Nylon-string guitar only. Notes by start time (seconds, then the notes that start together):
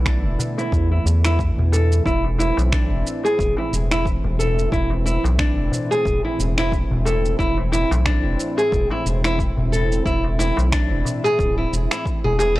0.06 D4
0.58 E4
0.91 E4
1.25 E4
1.73 A4
2.06 E4
2.39 E4
2.72 D4
3.25 G#4
3.58 E4
3.91 E4
4.39 A4
4.72 E4
5.06 E4
5.39 D4
5.91 G#4
6.24 E4
6.58 E4
7.06 A4
7.39 E4
7.72 E4
8.06 D4
8.58 G#4
8.91 E4
9.24 E4
9.72 A4
10.06 E4
10.39 E4
10.72 D4
11.24 G#4
11.58 E4
11.91 E4
12.24 G#4
12.39 G#4